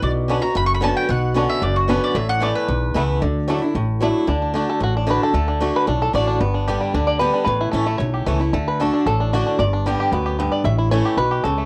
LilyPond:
<<
  \new Staff \with { instrumentName = "Mandolin" } { \time 4/4 \key d \major \tempo 4 = 226 d''8 r4 bes''8 \tuplet 3/2 { b''8 cis'''8 b''8 } a''8 g''8 | fis''4. e''8 d''8 fis'8 b'8 d''8 | e''8 fis''8 d''8 b'2~ b'8 | r1 |
r1 | r1 | r1 | r1 |
r1 | r1 | r1 | }
  \new Staff \with { instrumentName = "Five-string banjo" } { \time 4/4 \key d \major << { r4 <b d'>8 r4. <b d'>8 r8 | r4 <b d'>8 r4. <b d'>8 r8 | r4 <a b e'>8 r4. <a b e'>8 r8 | r4 <a d'>8 r4. <a d'>8 r8 |
r4. a'8 fis'8 d'8 b'8 a'8~ | a'4. b'4 a'8 d''4 | r2 r8 d''8 b'4 | b'4 a'4 cis''4 r4 |
r8 b'8 a'4 a'4 fis'4 | d''4 r2 r8 d''8 | e''4 cis''4 b'4 a'4 | } \\ { r1 | r1 | r1 | r1 |
d'8 d'8 d'4. r4. | a8 d'8 a4 d'4. d'8 | b8 d'8 g'8 g8 d'4. d'8 | r8 e'4 a4 g'8 a8 e'8 |
a4. d'4 d'4 d'8 | r8 d'8 g8 g'8 b8 g'8 b4 | r8 e'4 g'4 g'4 a8 | } >> }
  \new Staff \with { instrumentName = "Steel-string acoustic guitar" } { \time 4/4 \key d \major << { r4 <d b cis' fis'>8 <cis' fis'>8 r4 <d b cis' fis'>4 | r4 <d b cis' fis'>4 r4 <d b cis' fis'>4 | r4 <e a b e'>4 r4 <e a b e'>4 | r4 <fis a d' e'>8 <d' e'>8 r4 <fis a d' e'>4 |
r4 <d a d' fis'>4 r4 <d a d' fis'>4 | r4 <d a d' fis'>4 r4 <d a d' fis'>4 | r4 <d g b g'>4 r4 <d g b g'>4 | r4 <e a cis' e'>8 <cis' e'>8 r4 <e a cis' e'>8 <cis' e'>8 |
r4 <d a d' fis'>4 r4 <d a d' fis'>4 | r4 <d g b g'>4 r2 | r4 <e a cis' e'>4 r2 | } \\ { b,2 fis,2 | b,2 fis,2 | a,2 e,2 | d2 a,2 |
d2 a,2 | d2 a,2 | g,2 d2 | a,2 e,2 |
d2 a,2 | g,2 fis,4 g,4 | a,2 b,4 cis4 | } >> }
  \new Staff \with { instrumentName = "Upright bass" } { \clef bass \time 4/4 \key d \major b,,2 fis,,2 | b,,2 fis,,2 | a,,2 b,,4 cis,4 | d,2 a,,2 |
d,2 a,,2 | d,2 b,,4 a,,4 | g,,2 d,2 | a,,4 a,,4 b,,4 cis,4 |
d,2 a,,2 | g,,2 d,2 | a,,2 b,,4 cis,4 | }
>>